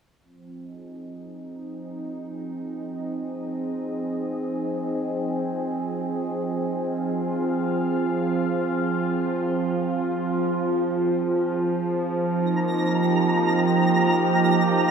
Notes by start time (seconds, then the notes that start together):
0.20 F3 C4
0.49 D#5
0.57 G#4
0.64 D#4
6.75 F5
7.06 F4
12.20 A#5 A#6
12.34 D#4
12.43 A#3
12.86 G4
13.21 D#5